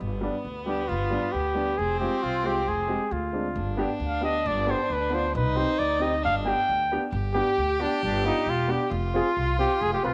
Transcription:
0.00 0.27 G1 loud
0.00 1.80 B3 loud
0.21 0.33 G3 medium
0.21 0.33 B3 medium
0.21 0.34 D4 medium
0.45 0.91 D2 medium
0.66 0.77 G3 medium
0.66 0.78 B3 medium
0.66 0.78 D4 medium
0.66 0.90 G4 medium
0.88 1.16 G1 loud
0.88 1.33 F4 medium
1.10 1.22 G3 medium
1.10 1.22 B3 medium
1.10 1.23 D4 medium
1.32 1.80 D2 medium
1.32 1.79 G4 medium
1.54 1.66 G3 medium
1.54 1.66 B3 medium
1.54 1.67 D4 medium
1.77 2.05 F1 medium
1.77 3.34 C4 loud
1.77 1.99 G#4 loud
1.99 2.11 G#3 medium
1.99 2.12 C4 medium
1.99 2.12 F4 medium
1.99 2.25 G4 medium
2.23 2.70 C2 medium
2.23 2.48 F4 medium
2.43 2.55 G#3 medium
2.43 2.56 C4 medium
2.43 2.57 F4 medium
2.43 2.70 G4 medium
2.68 2.94 F1 medium
2.68 3.14 G#4 medium
2.88 3.00 G#3 medium
2.88 3.00 C4 medium
2.88 3.01 G4 medium
3.11 3.57 D2 loud
3.11 3.79 F4 medium
3.33 3.44 G#3 medium
3.33 3.45 C4 medium
3.33 3.45 D4 medium
3.55 3.82 G1 loud
3.55 5.35 D4 loud
3.77 3.89 B3 medium
3.77 3.89 D4 medium
3.77 3.90 G4 medium
4.00 4.47 D2 medium
4.06 4.24 F5 medium
4.21 4.33 B3 medium
4.21 4.34 D4 medium
4.21 4.34 G4 medium
4.21 4.48 D#5 medium
4.46 4.72 G1 loud
4.46 4.72 D5 medium
4.67 4.78 B3 medium
4.67 4.78 D4 medium
4.67 4.79 G4 medium
4.67 4.94 C5 medium
4.90 5.36 D2 loud
4.90 5.16 B4 medium
5.10 5.22 B3 medium
5.10 5.23 D4 medium
5.10 5.24 F4 medium
5.14 5.35 C5 medium
5.34 5.61 C2 loud
5.34 6.25 D#4 loud
5.34 5.58 B4 medium
5.55 5.67 C4 medium
5.55 5.67 D#4 medium
5.55 5.68 G4 medium
5.55 5.80 C5 medium
5.79 6.26 D2 loud
5.79 6.03 D5 medium
5.99 6.11 C4 medium
5.99 6.12 D#4 medium
5.99 6.12 G4 medium
5.99 6.24 D#5 medium
6.24 6.51 G1 loud
6.24 6.90 D4 loud
6.24 6.35 F5 loud
6.45 6.56 B3 medium
6.45 6.57 D4 medium
6.45 6.58 G4 medium
6.45 7.09 G5 loud
6.69 6.95 D2 medium
6.92 7.02 B3 medium
6.92 7.02 D4 medium
6.92 7.03 G4 medium
7.10 7.39 G1 loud
7.10 8.91 G4 loud
7.34 7.46 B3 medium
7.34 7.47 D4 medium
7.34 7.82 G4 loud
7.34 7.47 G4 medium
7.58 7.84 D2 loud
7.80 7.91 B3 medium
7.80 7.91 D4 medium
7.80 8.03 D4 medium
7.80 7.92 G4 medium
8.03 8.30 G1 loud
8.03 8.24 D4 medium
8.25 8.36 B3 medium
8.25 8.36 D4 medium
8.25 8.51 D#4 medium
8.25 8.36 F4 medium
8.46 8.73 E1 medium
8.46 8.72 F4 medium
8.68 8.80 B3 medium
8.68 8.80 D4 medium
8.68 8.81 G4 medium
8.68 8.92 G4 medium
8.90 9.18 F1 loud
8.90 10.14 F4 loud
9.14 9.25 C4 medium
9.14 9.56 F4 medium
9.14 9.25 F4 medium
9.14 9.26 G#4 medium
9.37 9.63 C2 medium
9.59 9.70 C4 medium
9.59 9.70 F4 medium
9.59 9.83 G4 loud
9.59 9.71 G4 medium
9.81 9.95 F1 loud
9.81 9.92 G#4 loud
9.93 10.03 G4 medium
10.03 10.14 C2 medium
10.03 10.14 C4 medium
10.03 10.14 F4 medium
10.03 10.14 B4 medium

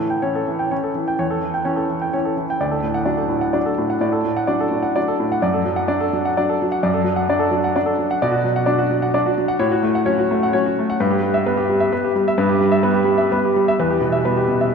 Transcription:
0.00 0.21 A2 medium
0.00 0.17 E3 soft
0.00 0.35 A4 soft
0.10 0.29 G5 soft
0.22 0.46 E3 soft
0.22 0.67 C#4 soft
0.22 0.42 C#5 medium
0.35 0.54 A4 medium
0.47 0.67 E3 soft
0.59 0.79 G5 soft
0.71 0.94 E3 soft
0.71 1.15 C#4 soft
0.71 0.91 C#5 soft
0.84 1.02 A4 soft
0.95 1.14 E3 soft
1.08 1.26 G5 medium
1.19 1.64 E2 medium
1.19 1.37 C#5 medium
1.30 1.49 A4 medium
1.42 1.61 E3 soft
1.54 1.73 G5 medium
1.65 1.88 E3 soft
1.65 2.10 C#4 soft
1.65 1.85 C#5 medium
1.76 1.96 A4 medium
1.89 2.09 E3 soft
2.02 2.21 G5 soft
2.13 2.36 E3 soft
2.13 2.57 C#4 soft
2.13 2.33 C#5 medium
2.25 2.45 A4 soft
2.37 2.56 E3 soft
2.50 2.61 G5 medium
2.60 3.06 D2 medium
2.60 2.79 D5 medium
2.71 2.90 A4 medium
2.83 3.02 A2 soft
2.94 3.14 F#5 medium
3.05 3.51 F#3 medium
3.05 3.51 D4 soft
3.05 3.26 D5 medium
3.18 3.38 A4 medium
3.29 3.50 A2 medium
3.41 3.62 F#5 medium
3.53 3.98 F#3 soft
3.53 3.98 D4 soft
3.53 3.74 D5 medium
3.66 3.86 A4 soft
3.78 3.98 A2 medium
3.90 4.09 F#5 soft
4.01 4.23 A2 medium
4.01 4.21 D5 medium
4.12 4.32 A4 medium
4.25 4.44 A2 medium
4.37 4.56 F#5 medium
4.47 4.92 F#3 soft
4.47 4.92 D4 medium
4.47 4.67 D5 medium
4.60 4.80 A4 medium
4.71 4.91 A2 medium
4.82 5.03 F#5 medium
4.96 5.39 F#3 soft
4.96 5.39 D4 soft
4.96 5.15 D5 medium
5.08 5.27 A4 medium
5.20 5.39 A2 medium
5.32 5.43 F#5 medium
5.42 5.87 F#2 medium
5.42 5.61 D5 medium
5.54 5.73 A4 medium
5.65 5.84 F#3 medium
5.76 5.96 F#5 medium
5.88 6.12 F#3 medium
5.88 6.32 D4 medium
5.88 6.08 D5 medium
6.01 6.20 A4 medium
6.13 6.32 F#3 medium
6.25 6.44 F#5 medium
6.37 6.60 F#3 medium
6.37 6.79 D4 medium
6.37 6.56 D5 medium
6.49 6.68 A4 medium
6.62 6.79 F#3 medium
6.72 6.90 F#5 medium
6.83 7.27 F#2 medium
6.83 7.01 D5 medium
6.94 7.12 A4 medium
7.04 7.23 F#3 medium
7.16 7.35 F#5 medium
7.29 7.49 F#3 medium
7.29 7.72 D4 medium
7.29 7.48 D5 medium
7.39 7.59 A4 medium
7.51 7.70 F#3 medium
7.64 7.83 F#5 medium
7.76 7.97 F#3 medium
7.76 8.18 D4 medium
7.76 7.95 D5 medium
7.86 8.05 A4 medium
7.99 8.17 F#3 medium
8.11 8.22 F#5 medium
8.22 8.67 B2 medium
8.22 8.40 D5 medium
8.31 8.51 F#4 medium
8.44 8.63 F#3 medium
8.56 8.75 F#5 medium
8.66 8.89 F#3 medium
8.66 9.10 D4 medium
8.66 8.86 D5 medium
8.78 8.98 F#4 medium
8.91 9.10 F#3 medium
9.02 9.22 F#5 medium
9.14 9.37 F#3 medium
9.14 9.56 D4 medium
9.14 9.33 D5 medium
9.26 9.45 F#4 medium
9.38 9.56 F#3 medium
9.48 9.60 F#5 medium
9.59 10.04 A2 medium
9.59 9.78 C#5 medium
9.72 9.90 F#4 medium
9.83 10.01 A3 medium
9.95 10.13 F#5 medium
10.06 10.49 F#3 medium
10.06 10.49 C#4 medium
10.06 10.25 C#5 medium
10.19 10.37 F#4 medium
10.31 10.49 A3 medium
10.43 10.61 F#5 medium
10.53 10.95 F#3 medium
10.53 10.96 C#4 medium
10.53 10.72 C#5 medium
10.66 10.84 F#4 medium
10.79 10.96 A3 medium
10.90 11.00 F#5 medium
11.00 11.44 G2 medium
11.00 11.18 B4 medium
11.11 11.29 G4 medium
11.22 11.40 G3 medium
11.34 11.52 E5 medium
11.46 11.68 G3 medium
11.46 11.89 B3 medium
11.46 11.64 B4 medium
11.57 11.76 G4 medium
11.69 11.88 G3 medium
11.80 11.99 E5 medium
11.92 12.14 G3 medium
11.92 12.34 B3 medium
11.92 12.11 B4 medium
12.04 12.23 G4 medium
12.16 12.34 G3 medium
12.28 12.45 E5 medium
12.38 12.83 G2 medium
12.38 12.56 B4 medium
12.49 12.68 G4 medium
12.61 12.79 G3 medium
12.72 12.91 E5 medium
12.83 13.03 G3 medium
12.83 13.28 B3 medium
12.83 13.03 B4 medium
12.94 13.14 G4 medium
13.05 13.26 G3 medium
13.18 13.38 E5 medium
13.32 13.55 G3 medium
13.32 13.75 B3 medium
13.32 13.51 B4 medium
13.45 13.63 G4 medium
13.56 13.75 G3 medium
13.68 13.79 E5 medium
13.79 14.24 E2 medium
13.79 13.97 B4 medium
13.90 14.08 G4 medium
14.01 14.20 B2 medium
14.12 14.31 E5 medium
14.25 14.69 G3 medium
14.25 14.69 B3 medium
14.25 14.44 B4 medium
14.37 14.56 G4 medium
14.48 14.68 B2 medium
14.61 14.74 E5 medium

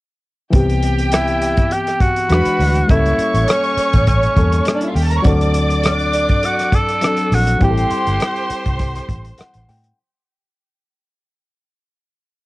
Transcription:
0.50 1.54 C2 medium
0.50 2.25 E3 medium
0.50 2.26 B3 medium
0.50 2.27 C4 medium
0.50 1.97 G4 medium
0.50 1.97 G5 medium
0.50 kick loud
0.50 closed hi-hat medium
0.55 2.28 G4 medium
0.69 closed hi-hat soft
0.82 closed hi-hat medium
0.98 closed hi-hat soft
1.12 1.74 E4 medium
1.12 cross-stick loud
1.12 closed hi-hat medium
1.27 closed hi-hat soft
1.42 closed hi-hat medium
1.57 kick medium
1.57 closed hi-hat soft
1.71 2.03 G4 medium
1.71 closed hi-hat medium
1.87 cross-stick soft
1.87 closed hi-hat soft
2.00 2.89 F#4 medium
2.00 kick medium
2.00 closed hi-hat medium
2.16 closed hi-hat medium
2.29 2.42 E2 medium
2.29 2.89 E3 medium
2.29 2.37 F#3 soft
2.29 2.90 D4 medium
2.29 2.90 F#4 medium
2.29 2.59 B4 medium
2.29 2.59 B5 medium
2.29 cross-stick medium
2.29 closed hi-hat medium
2.37 2.92 G#3 medium
2.45 muted fingered electric bass stroke soft
2.45 closed hi-hat medium
2.59 2.82 D2 medium
2.59 open hi-hat medium
2.76 closed hi-hat medium
2.87 3.12 C#2 medium
2.87 4.33 G3 medium
2.87 4.33 A#3 soft
2.87 4.34 C#4 medium
2.87 3.50 E4 medium
2.87 4.64 C#5 medium
2.87 4.64 C#6 loud
2.87 kick loud
2.87 closed hi-hat medium
2.92 4.35 A4 medium
3.06 closed hi-hat soft
3.18 muted fingered electric bass stroke soft
3.18 closed hi-hat medium
3.34 3.45 A1 medium
3.34 closed hi-hat soft
3.48 4.07 C#4 medium
3.48 cross-stick loud
3.48 closed hi-hat medium
3.64 closed hi-hat soft
3.77 muted fingered electric bass stroke soft
3.77 closed hi-hat medium
3.93 4.26 A1 medium
3.93 kick medium
3.93 closed hi-hat medium
4.07 4.92 C#4 medium
4.07 kick medium
4.07 closed hi-hat medium
4.23 closed hi-hat soft
4.36 4.59 E2 medium
4.36 5.25 G3 soft
4.36 5.25 A#3 soft
4.36 5.26 C#4 soft
4.36 5.26 A4 soft
4.36 kick medium
4.36 closed hi-hat medium
4.52 closed hi-hat medium
4.65 cross-stick medium
4.65 closed hi-hat medium
4.74 4.82 D4 medium
4.74 4.82 D5 medium
4.81 4.89 E4 medium
4.81 4.89 E5 medium
4.81 closed hi-hat medium
4.89 4.96 F4 medium
4.89 4.96 F5 medium
4.95 5.18 D#2 medium
4.95 5.03 G4 medium
4.95 5.03 G5 medium
4.95 open hi-hat medium
5.04 5.12 A4 medium
5.04 5.12 A5 medium
5.11 5.18 A#4 medium
5.11 5.18 A#5 medium
5.11 closed hi-hat medium
5.18 5.25 C#5 medium
5.18 5.25 C#6 medium
5.22 6.26 D2 medium
5.22 6.97 F#3 medium
5.22 6.98 C4 medium
5.22 6.99 D4 medium
5.22 7.27 D5 medium
5.22 7.54 F#5 medium
5.22 7.27 D6 loud
5.22 kick loud
5.22 closed hi-hat medium
5.27 7.00 A4 medium
5.41 closed hi-hat soft
5.54 closed hi-hat medium
5.70 closed hi-hat soft
5.83 6.46 D4 medium
5.83 cross-stick loud
5.83 closed hi-hat medium
5.99 closed hi-hat soft
6.13 closed hi-hat medium
6.29 kick medium
6.29 closed hi-hat soft
6.43 6.76 F#4 medium
6.43 closed hi-hat medium
6.59 cross-stick soft
6.59 closed hi-hat soft
6.72 7.36 A4 loud
6.72 kick medium
6.72 closed hi-hat medium
6.89 closed hi-hat medium
7.01 7.61 F#3 soft
7.01 7.59 C4 soft
7.01 7.62 D4 soft
7.01 7.62 A4 medium
7.01 cross-stick medium
7.01 closed hi-hat medium
7.17 closed hi-hat medium
7.32 7.54 A#1 medium
7.32 7.63 F#4 medium
7.32 cross-stick soft
7.32 open hi-hat medium
7.47 closed hi-hat medium
7.59 7.84 A1 medium
7.59 9.92 G3 medium
7.59 9.93 C4 medium
7.59 9.94 E4 medium
7.59 9.64 C5 medium
7.59 9.91 G5 medium
7.59 9.64 C6 loud
7.59 kick loud
7.59 closed hi-hat medium
7.64 9.36 G4 loud
7.64 7.70 G4 medium
7.71 9.98 A4 medium
7.78 closed hi-hat soft
7.90 10.20 C6 medium
7.90 muted fingered electric bass stroke soft
7.90 closed hi-hat medium
8.07 8.17 G1 medium
8.07 closed hi-hat soft
8.20 cross-stick loud
8.20 closed hi-hat medium
8.36 closed hi-hat soft
8.50 muted fingered electric bass stroke soft
8.50 closed hi-hat medium
8.66 8.99 C2 medium
8.66 kick medium
8.66 closed hi-hat soft
8.79 kick medium
8.79 closed hi-hat medium
8.95 cross-stick soft
8.95 closed hi-hat soft
9.09 9.31 A1 medium
9.09 kick medium
9.09 closed hi-hat medium
9.25 closed hi-hat medium
9.38 9.66 F#5 medium
9.38 muted fingered electric bass stroke soft
9.38 cross-stick medium
9.38 closed hi-hat medium
9.54 9.65 A1 medium
9.54 closed hi-hat medium
9.68 9.90 A2 medium
9.68 9.96 G5 medium
9.68 cross-stick soft
9.68 open hi-hat medium
9.84 closed hi-hat medium

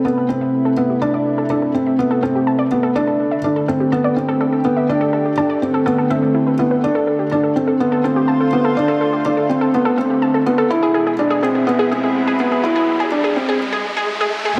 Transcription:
0.00 2.96 C3 medium
0.00 10.70 A3 medium
0.00 6.83 B4 medium
0.05 0.26 B3 medium
0.05 4.38 E4 medium
0.05 0.13 A4 medium
0.18 0.22 A4 medium
0.29 0.72 C4 medium
0.41 0.46 E5 medium
0.65 0.68 A4 loud
0.77 0.99 B3 medium
0.77 0.85 A4 medium
0.90 0.95 G4 medium
1.02 1.45 D4 medium
1.02 1.07 A5 medium
1.14 1.19 D5 medium
1.38 1.45 A4 medium
1.50 1.72 D4 medium
1.50 1.57 A4 loud
1.62 1.67 A4 medium
1.74 1.96 C4 medium
1.86 1.91 E5 medium
1.99 2.20 B3 medium
2.11 2.14 A4 loud
2.23 2.66 C4 medium
2.23 2.30 A4 medium
2.35 2.40 G4 medium
2.47 2.52 A5 medium
2.59 2.64 D5 loud
2.71 2.93 B3 medium
2.83 2.91 A4 loud
2.95 10.70 D3 medium
2.95 3.39 D4 medium
2.95 3.03 A4 loud
3.07 3.12 A4 medium
3.31 3.36 E5 medium
3.44 3.66 D4 medium
3.56 3.59 A4 medium
3.68 3.90 C4 medium
3.68 8.07 G4 medium
3.68 3.75 A4 medium
3.80 3.85 G4 medium
3.92 4.14 B3 medium
3.92 3.97 A5 medium
4.04 4.09 D5 medium
4.16 4.59 C4 medium
4.28 4.36 A4 loud
4.41 4.48 A4 medium
4.53 4.58 A4 medium
4.65 4.86 B3 medium
4.77 4.82 E5 medium
4.89 5.32 D4 medium
5.01 5.04 A4 medium
5.13 5.20 A4 medium
5.25 5.30 G4 medium
5.38 5.59 D4 medium
5.38 5.42 A5 medium
5.50 5.54 D5 medium
5.62 5.83 C4 medium
5.74 5.81 A4 medium
5.86 6.07 B3 medium
5.86 5.93 A4 loud
5.98 6.03 A4 medium
6.10 6.53 C4 medium
6.10 6.17 E5 medium
6.22 6.27 A3 medium
6.35 6.39 E4 medium
6.47 6.51 B4 medium
6.59 6.80 B3 medium
6.59 6.64 E4 medium
6.71 6.76 B4 medium
6.83 7.26 D4 medium
6.83 riser medium
6.95 6.98 A4 medium
7.07 7.14 A4 medium
7.19 7.24 G4 medium
7.31 7.53 D4 medium
7.31 7.36 A5 medium
7.43 7.48 A4 medium
7.56 7.77 C4 medium
7.67 7.75 A4 medium
7.67 10.70 C5 medium
7.80 8.01 B3 medium
7.80 10.70 F4 medium
7.92 7.95 A4 medium
8.04 8.47 C4 medium
8.04 8.11 A4 medium
8.16 8.21 G4 medium
8.28 8.33 A5 medium
8.40 8.45 A4 medium
8.53 8.74 B3 medium
8.65 8.72 A4 medium
8.77 9.20 D4 medium
8.88 8.91 A4 medium
9.01 9.08 A4 medium
9.13 9.18 G4 medium
9.25 9.47 D4 medium
9.25 9.30 A5 medium
9.37 9.42 A4 medium
9.49 9.71 C4 medium
9.61 9.68 A4 medium
9.74 9.95 B3 medium
9.85 9.88 A4 medium
9.98 10.41 C4 medium
9.98 10.05 A4 medium
10.10 10.15 G4 medium
10.22 10.27 A5 medium
10.34 10.39 A4 medium
10.46 10.67 B3 medium
10.58 10.65 A4 medium
10.69 13.60 B2 medium
10.69 11.13 E4 medium
10.83 13.60 G#3 medium
10.83 10.85 G#4 loud
10.94 11.01 G#4 medium
11.07 13.61 E4 medium
11.07 11.11 G#4 medium
11.19 11.40 D4 medium
11.30 11.33 G#4 medium
11.43 11.64 C4 medium
11.43 11.50 G#4 medium
11.55 11.60 G#4 medium
11.67 11.88 B3 medium
11.79 11.82 G#4 loud
11.85 13.60 B4 medium
11.91 12.34 C4 medium
11.91 11.98 G#4 medium
12.04 12.08 G#4 medium
12.27 12.30 G#4 loud
12.40 12.61 B3 medium
12.40 12.47 G#4 medium
12.52 12.56 G#4 medium
12.63 13.06 E4 medium
12.76 12.78 G#4 loud
13.00 13.03 G#4 loud
13.12 13.33 D4 medium
13.24 13.27 G#4 loud
13.36 13.57 C4 medium
13.49 13.51 G#4 loud
13.73 13.75 G#4 loud
13.97 14.00 G#4 loud
14.21 14.24 G#4 loud
14.45 14.48 G#4 loud

